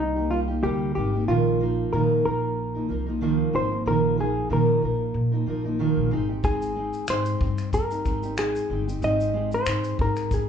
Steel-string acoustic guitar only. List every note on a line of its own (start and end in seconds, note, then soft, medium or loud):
0.00 0.16 G3 medium
0.00 0.17 A#3 medium
0.00 0.17 D#4 soft
0.00 0.15 G4 medium
0.16 0.30 A#3 soft
0.16 0.31 D#4 soft
0.16 0.31 G4 soft
0.30 0.48 G3 soft
0.30 0.49 A#3 medium
0.30 0.49 D#4 medium
0.30 0.47 G4 medium
0.48 0.62 A#3 soft
0.48 0.63 D#4 soft
0.48 0.63 G4 medium
0.62 0.95 C3 medium
0.62 0.94 G3 medium
0.62 0.95 A#3 medium
0.62 0.96 D#4 medium
0.62 0.96 G4 medium
0.95 1.13 G3 medium
0.95 1.14 A#3 medium
0.95 1.14 D#4 medium
0.95 1.12 G4 medium
1.13 1.28 A#3 soft
1.13 1.28 D#4 soft
1.13 1.28 G4 soft
1.28 1.60 A#2 medium
1.28 1.60 D#3 medium
1.28 1.59 F3 medium
1.28 1.60 A#3 medium
1.28 1.61 D#4 medium
1.28 1.61 A#4 medium
1.60 1.92 F3 medium
1.60 1.93 A#3 medium
1.60 1.93 D#4 medium
1.60 1.94 A#4 medium
1.92 2.25 A#2 medium
1.92 2.25 D#3 medium
1.92 2.24 F3 medium
1.92 2.25 A#3 medium
1.92 2.26 D#4 medium
1.92 2.26 A#4 medium
2.25 2.75 F3 soft
2.25 2.75 A#3 medium
2.25 2.75 D#4 soft
2.25 2.73 A#4 medium
2.75 2.87 F3 soft
2.75 2.89 A#3 soft
2.75 2.90 D#4 soft
2.75 2.89 A#4 soft
2.89 3.07 F3 medium
2.89 3.07 A#3 medium
2.89 3.07 D#4 medium
2.89 3.05 A#4 medium
3.06 3.21 F3 soft
3.06 3.21 A#3 soft
3.06 3.22 D#4 soft
3.06 3.21 A#4 medium
3.21 3.53 A#2 medium
3.21 3.54 D#3 medium
3.21 3.52 F3 medium
3.21 3.53 A#3 medium
3.21 3.54 D#4 medium
3.21 3.54 A#4 medium
3.53 3.71 F3 medium
3.53 3.72 A#3 medium
3.53 3.71 D#4 medium
3.53 3.70 A#4 medium
3.71 3.85 F3 soft
3.71 3.86 A#3 soft
3.71 3.86 D#4 soft
3.71 3.86 A#4 soft
3.85 4.18 A#2 medium
3.85 4.18 D#3 medium
3.85 4.16 F3 medium
3.85 4.18 A#3 medium
3.85 4.19 D#4 medium
3.85 4.19 A#4 medium
4.18 4.49 F3 medium
4.18 4.49 A#3 medium
4.18 4.50 D#4 medium
4.18 4.50 A#4 medium
4.49 4.82 A#2 medium
4.49 4.82 D#3 medium
4.49 4.80 F3 medium
4.49 4.82 A#3 medium
4.49 4.83 D#4 medium
4.49 4.83 A#4 medium
4.82 5.32 F3 soft
4.82 5.33 A#3 soft
4.82 5.32 D#4 soft
4.82 5.31 A#4 medium
5.32 5.45 F3 soft
5.32 5.46 A#3 soft
5.32 5.47 D#4 soft
5.32 5.47 A#4 soft
5.46 5.64 F3 medium
5.46 5.65 A#3 medium
5.46 5.64 D#4 medium
5.46 5.63 A#4 medium
5.64 5.79 F3 soft
5.64 5.79 A#3 soft
5.64 5.80 D#4 medium
5.64 5.79 A#4 soft
5.79 6.11 A#2 medium
5.79 6.12 D#3 medium
5.79 6.10 F3 medium
5.79 6.12 A#3 medium
5.79 6.12 D#4 medium
5.79 6.13 A#4 medium
6.11 6.29 G#3 medium
6.11 6.30 C4 medium
6.11 6.30 D#4 medium
6.11 6.28 G4 medium
6.29 6.43 C4 soft
6.29 6.44 D#4 soft
6.29 6.44 G4 soft
6.43 6.74 G#3 medium
6.43 6.75 C4 medium
6.43 6.76 D#4 medium
6.75 7.07 G#3 medium
6.75 7.08 C4 medium
6.75 7.09 D#4 medium
7.08 7.41 G#3 medium
7.08 7.41 C4 medium
7.08 7.41 D#4 medium
7.08 7.42 G4 medium
7.42 7.91 C4 soft
7.42 7.91 D#4 medium
7.42 7.89 G4 medium
7.91 8.05 C4 soft
7.91 8.06 D#4 soft
7.91 8.05 G4 soft
8.05 8.23 G#3 soft
8.05 8.23 C4 medium
8.05 8.24 D#4 medium
8.05 8.22 G4 medium
8.23 8.37 C4 soft
8.23 8.38 D#4 medium
8.23 8.37 G4 medium
8.37 8.68 G#3 medium
8.37 8.70 C4 medium
8.37 8.71 D#4 medium
8.70 8.87 G#3 medium
8.70 8.88 C4 medium
8.70 8.88 D#4 medium
8.70 8.86 G4 medium
8.88 9.01 C4 soft
8.88 9.02 D#4 soft
8.88 9.02 G4 soft
9.02 9.32 G#3 medium
9.02 9.33 C4 medium
9.02 9.35 D#4 medium
9.02 9.35 G4 medium
9.34 9.65 G#3 medium
9.34 9.66 C4 medium
9.34 9.67 D#4 medium
9.34 9.68 G4 medium
9.66 9.97 G#3 medium
9.66 9.99 C4 medium
9.66 10.00 D#4 medium
9.66 10.00 G4 medium
9.99 10.49 G#3 medium
9.99 10.49 C4 soft
9.99 10.49 D#4 medium
9.99 10.48 G4 medium